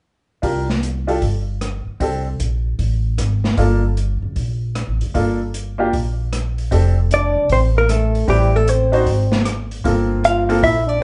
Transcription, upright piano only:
0, 0, Header, 1, 2, 480
1, 0, Start_track
1, 0, Key_signature, -1, "major"
1, 0, Tempo, 392413
1, 528, Time_signature, 4, 2, 24, 8
1, 13492, End_track
2, 0, Start_track
2, 0, Title_t, "Upright piano"
2, 0, Program_c, 0, 0
2, 515, Note_on_c, 0, 62, 43
2, 521, Note_on_c, 0, 65, 42
2, 531, Note_on_c, 0, 67, 40
2, 538, Note_on_c, 0, 70, 48
2, 804, Note_off_c, 0, 62, 0
2, 807, Note_off_c, 0, 65, 0
2, 812, Note_off_c, 0, 67, 0
2, 816, Note_off_c, 0, 70, 0
2, 1313, Note_on_c, 0, 62, 50
2, 1318, Note_on_c, 0, 65, 48
2, 1325, Note_on_c, 0, 67, 44
2, 1332, Note_on_c, 0, 69, 57
2, 1469, Note_off_c, 0, 62, 0
2, 1471, Note_off_c, 0, 65, 0
2, 1475, Note_off_c, 0, 67, 0
2, 1478, Note_off_c, 0, 69, 0
2, 2449, Note_on_c, 0, 60, 47
2, 2459, Note_on_c, 0, 62, 44
2, 2465, Note_on_c, 0, 67, 44
2, 2472, Note_on_c, 0, 69, 52
2, 2733, Note_off_c, 0, 60, 0
2, 2738, Note_off_c, 0, 62, 0
2, 2741, Note_off_c, 0, 67, 0
2, 2745, Note_off_c, 0, 69, 0
2, 4370, Note_on_c, 0, 58, 53
2, 4376, Note_on_c, 0, 62, 45
2, 4386, Note_on_c, 0, 65, 46
2, 4389, Note_on_c, 0, 69, 58
2, 4655, Note_off_c, 0, 58, 0
2, 4657, Note_off_c, 0, 62, 0
2, 4663, Note_off_c, 0, 65, 0
2, 4664, Note_off_c, 0, 69, 0
2, 6290, Note_on_c, 0, 58, 50
2, 6297, Note_on_c, 0, 62, 45
2, 6303, Note_on_c, 0, 65, 43
2, 6312, Note_on_c, 0, 69, 50
2, 6575, Note_off_c, 0, 58, 0
2, 6578, Note_off_c, 0, 62, 0
2, 6581, Note_off_c, 0, 65, 0
2, 6586, Note_off_c, 0, 69, 0
2, 7072, Note_on_c, 0, 58, 55
2, 7080, Note_on_c, 0, 62, 51
2, 7086, Note_on_c, 0, 65, 51
2, 7095, Note_on_c, 0, 67, 64
2, 7230, Note_off_c, 0, 58, 0
2, 7234, Note_off_c, 0, 62, 0
2, 7238, Note_off_c, 0, 65, 0
2, 7242, Note_off_c, 0, 67, 0
2, 8209, Note_on_c, 0, 60, 52
2, 8217, Note_on_c, 0, 62, 50
2, 8222, Note_on_c, 0, 67, 53
2, 8228, Note_on_c, 0, 69, 57
2, 8494, Note_off_c, 0, 60, 0
2, 8497, Note_off_c, 0, 62, 0
2, 8500, Note_off_c, 0, 67, 0
2, 8503, Note_off_c, 0, 69, 0
2, 10123, Note_on_c, 0, 60, 48
2, 10124, Note_on_c, 0, 64, 44
2, 10133, Note_on_c, 0, 67, 41
2, 10134, Note_on_c, 0, 71, 52
2, 10409, Note_off_c, 0, 60, 0
2, 10409, Note_off_c, 0, 64, 0
2, 10414, Note_off_c, 0, 67, 0
2, 10414, Note_off_c, 0, 71, 0
2, 10913, Note_on_c, 0, 62, 65
2, 10924, Note_on_c, 0, 63, 56
2, 10924, Note_on_c, 0, 66, 59
2, 10934, Note_on_c, 0, 72, 66
2, 11068, Note_off_c, 0, 62, 0
2, 11074, Note_off_c, 0, 63, 0
2, 11074, Note_off_c, 0, 66, 0
2, 11079, Note_off_c, 0, 72, 0
2, 12039, Note_on_c, 0, 58, 51
2, 12046, Note_on_c, 0, 60, 44
2, 12052, Note_on_c, 0, 65, 47
2, 12059, Note_on_c, 0, 69, 53
2, 12772, Note_off_c, 0, 58, 0
2, 12776, Note_off_c, 0, 60, 0
2, 12779, Note_off_c, 0, 65, 0
2, 12783, Note_off_c, 0, 69, 0
2, 12830, Note_on_c, 0, 60, 60
2, 12831, Note_on_c, 0, 58, 60
2, 12837, Note_on_c, 0, 65, 62
2, 12844, Note_on_c, 0, 69, 71
2, 12985, Note_off_c, 0, 58, 0
2, 12985, Note_off_c, 0, 60, 0
2, 12988, Note_off_c, 0, 65, 0
2, 12992, Note_off_c, 0, 69, 0
2, 13492, End_track
0, 0, End_of_file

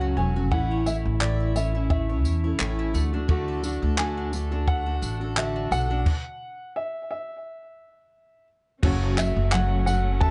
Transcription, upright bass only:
0, 0, Header, 1, 2, 480
1, 0, Start_track
1, 0, Tempo, 692841
1, 357, Time_signature, 4, 2, 24, 8
1, 7140, End_track
2, 0, Start_track
2, 0, Title_t, "Upright bass"
2, 0, Program_c, 0, 32
2, 0, Note_on_c, 0, 37, 76
2, 91, Note_off_c, 0, 37, 0
2, 115, Note_on_c, 0, 28, 90
2, 358, Note_off_c, 0, 28, 0
2, 358, Note_on_c, 0, 33, 92
2, 702, Note_off_c, 0, 33, 0
2, 730, Note_on_c, 0, 33, 99
2, 1556, Note_off_c, 0, 33, 0
2, 1556, Note_on_c, 0, 40, 74
2, 1778, Note_off_c, 0, 40, 0
2, 1794, Note_on_c, 0, 33, 83
2, 2017, Note_off_c, 0, 33, 0
2, 2039, Note_on_c, 0, 38, 97
2, 2623, Note_off_c, 0, 38, 0
2, 2648, Note_on_c, 0, 38, 94
2, 3450, Note_off_c, 0, 38, 0
2, 3479, Note_on_c, 0, 33, 80
2, 3932, Note_off_c, 0, 33, 0
2, 3957, Note_on_c, 0, 35, 95
2, 4179, Note_off_c, 0, 35, 0
2, 6119, Note_on_c, 0, 30, 109
2, 6461, Note_off_c, 0, 30, 0
2, 6488, Note_on_c, 0, 30, 98
2, 7140, Note_off_c, 0, 30, 0
2, 7140, End_track
0, 0, End_of_file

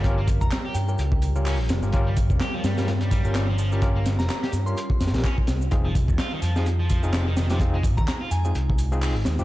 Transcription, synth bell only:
0, 0, Header, 1, 2, 480
1, 0, Start_track
1, 0, Tempo, 472441
1, 45, Time_signature, 4, 2, 24, 8
1, 9593, End_track
2, 0, Start_track
2, 0, Title_t, "Synth bell"
2, 0, Program_c, 0, 98
2, 418, Note_on_c, 0, 82, 91
2, 486, Note_off_c, 0, 82, 0
2, 520, Note_on_c, 0, 82, 78
2, 610, Note_off_c, 0, 82, 0
2, 757, Note_on_c, 0, 79, 89
2, 848, Note_off_c, 0, 79, 0
2, 899, Note_on_c, 0, 79, 74
2, 967, Note_off_c, 0, 79, 0
2, 4254, Note_on_c, 0, 82, 88
2, 4324, Note_off_c, 0, 82, 0
2, 4361, Note_on_c, 0, 82, 77
2, 4451, Note_off_c, 0, 82, 0
2, 4737, Note_on_c, 0, 84, 88
2, 4805, Note_off_c, 0, 84, 0
2, 4844, Note_on_c, 0, 84, 76
2, 4932, Note_off_c, 0, 84, 0
2, 8101, Note_on_c, 0, 82, 89
2, 8167, Note_off_c, 0, 82, 0
2, 8205, Note_on_c, 0, 82, 77
2, 8293, Note_off_c, 0, 82, 0
2, 8446, Note_on_c, 0, 80, 91
2, 8533, Note_off_c, 0, 80, 0
2, 8583, Note_on_c, 0, 80, 76
2, 8648, Note_off_c, 0, 80, 0
2, 9593, End_track
0, 0, End_of_file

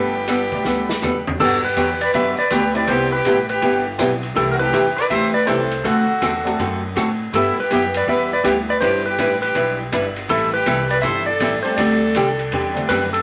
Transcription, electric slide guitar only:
0, 0, Header, 1, 2, 480
1, 0, Start_track
1, 0, Key_signature, 1, "major"
1, 0, Tempo, 371058
1, 1806, Time_signature, 4, 2, 24, 8
1, 17103, End_track
2, 0, Start_track
2, 0, Title_t, "Electric slide guitar"
2, 0, Program_c, 0, 29
2, 0, Note_on_c, 0, 71, 74
2, 1583, Note_off_c, 0, 71, 0
2, 1815, Note_on_c, 0, 69, 90
2, 2102, Note_off_c, 0, 69, 0
2, 2129, Note_on_c, 0, 71, 94
2, 2604, Note_off_c, 0, 71, 0
2, 2606, Note_on_c, 0, 74, 87
2, 2758, Note_off_c, 0, 74, 0
2, 2782, Note_on_c, 0, 76, 102
2, 3081, Note_off_c, 0, 76, 0
2, 3087, Note_on_c, 0, 74, 95
2, 3242, Note_on_c, 0, 71, 95
2, 3250, Note_off_c, 0, 74, 0
2, 3535, Note_off_c, 0, 71, 0
2, 3576, Note_on_c, 0, 74, 82
2, 3726, Note_on_c, 0, 72, 90
2, 3739, Note_off_c, 0, 74, 0
2, 4035, Note_off_c, 0, 72, 0
2, 4040, Note_on_c, 0, 71, 99
2, 4509, Note_off_c, 0, 71, 0
2, 4524, Note_on_c, 0, 71, 71
2, 4968, Note_off_c, 0, 71, 0
2, 5646, Note_on_c, 0, 69, 94
2, 5827, Note_off_c, 0, 69, 0
2, 5840, Note_on_c, 0, 70, 71
2, 5937, Note_off_c, 0, 70, 0
2, 5942, Note_on_c, 0, 71, 101
2, 6423, Note_on_c, 0, 74, 84
2, 6445, Note_off_c, 0, 71, 0
2, 6585, Note_off_c, 0, 74, 0
2, 6601, Note_on_c, 0, 76, 97
2, 6904, Note_off_c, 0, 76, 0
2, 6909, Note_on_c, 0, 74, 96
2, 7068, Note_off_c, 0, 74, 0
2, 7077, Note_on_c, 0, 72, 104
2, 7561, Note_on_c, 0, 69, 80
2, 7575, Note_off_c, 0, 72, 0
2, 8471, Note_off_c, 0, 69, 0
2, 9513, Note_on_c, 0, 69, 93
2, 9820, Note_off_c, 0, 69, 0
2, 9832, Note_on_c, 0, 71, 95
2, 10309, Note_off_c, 0, 71, 0
2, 10311, Note_on_c, 0, 74, 96
2, 10465, Note_on_c, 0, 76, 100
2, 10466, Note_off_c, 0, 74, 0
2, 10777, Note_off_c, 0, 76, 0
2, 10779, Note_on_c, 0, 74, 92
2, 10924, Note_off_c, 0, 74, 0
2, 10931, Note_on_c, 0, 71, 95
2, 11015, Note_off_c, 0, 71, 0
2, 11256, Note_on_c, 0, 74, 86
2, 11386, Note_off_c, 0, 74, 0
2, 11392, Note_on_c, 0, 72, 102
2, 11712, Note_off_c, 0, 72, 0
2, 11717, Note_on_c, 0, 71, 90
2, 12171, Note_off_c, 0, 71, 0
2, 12186, Note_on_c, 0, 71, 83
2, 12637, Note_off_c, 0, 71, 0
2, 13324, Note_on_c, 0, 69, 89
2, 13624, Note_off_c, 0, 69, 0
2, 13630, Note_on_c, 0, 71, 101
2, 14110, Note_on_c, 0, 74, 95
2, 14128, Note_off_c, 0, 71, 0
2, 14247, Note_off_c, 0, 74, 0
2, 14252, Note_on_c, 0, 76, 107
2, 14571, Note_on_c, 0, 74, 97
2, 14591, Note_off_c, 0, 76, 0
2, 15034, Note_off_c, 0, 74, 0
2, 15040, Note_on_c, 0, 72, 89
2, 15221, Note_on_c, 0, 74, 90
2, 15231, Note_off_c, 0, 72, 0
2, 16672, Note_on_c, 0, 71, 106
2, 16675, Note_off_c, 0, 74, 0
2, 16981, Note_off_c, 0, 71, 0
2, 16986, Note_on_c, 0, 69, 75
2, 17103, Note_off_c, 0, 69, 0
2, 17103, End_track
0, 0, End_of_file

